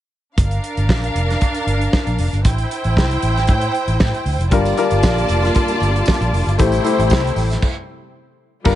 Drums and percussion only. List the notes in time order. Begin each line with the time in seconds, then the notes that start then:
0.38 kick, closed hi-hat
0.51 closed hi-hat
0.64 closed hi-hat
0.77 closed hi-hat
0.89 kick, snare
1.04 closed hi-hat
1.16 closed hi-hat
1.30 snare, closed hi-hat
1.41 kick, closed hi-hat
1.54 closed hi-hat
1.68 closed hi-hat
1.81 closed hi-hat
1.93 kick, snare
2.07 closed hi-hat
2.18 open hi-hat
2.34 closed hi-hat
2.45 kick, closed hi-hat
2.58 closed hi-hat
2.71 closed hi-hat
2.84 closed hi-hat
2.97 kick, snare
3.11 closed hi-hat
3.22 closed hi-hat
3.37 snare, closed hi-hat
3.47 kick, closed hi-hat
3.61 closed hi-hat
3.75 closed hi-hat
3.88 closed hi-hat
4.00 kick, snare
4.14 closed hi-hat
4.26 open hi-hat
4.41 closed hi-hat
4.51 kick, closed hi-hat, tambourine
4.65 closed hi-hat, tambourine
4.78 closed hi-hat, tambourine
4.91 closed hi-hat, tambourine
5.03 kick, snare, tambourine
5.18 closed hi-hat
5.28 closed hi-hat, tambourine
5.42 snare, closed hi-hat, tambourine
5.55 kick, closed hi-hat, tambourine
5.68 closed hi-hat, tambourine
5.80 closed hi-hat, tambourine
5.96 closed hi-hat
6.06 kick, snare, tambourine
6.21 closed hi-hat
6.34 open hi-hat
6.49 closed hi-hat
6.59 kick, closed hi-hat, tambourine
6.72 closed hi-hat, tambourine
6.84 closed hi-hat, tambourine
6.98 closed hi-hat, tambourine
7.10 kick, snare, tambourine
7.27 closed hi-hat
7.36 open hi-hat, tambourine
7.50 snare, closed hi-hat, tambourine
7.62 kick, crash
8.65 kick, crash, tambourine